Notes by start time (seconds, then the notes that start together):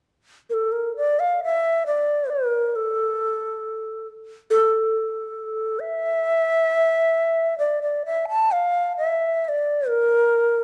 0.50 A4 A#4
0.72 A#4
0.96 D5
1.19 F5
1.43 E5
1.86 D5
2.30 A#4
2.76 A4
4.50 A4
5.80 E5
7.59 D5
7.82 D5
8.05 E5
8.29 A5
8.52 F5
8.97 E5
9.45 D5 E5
9.88 A#4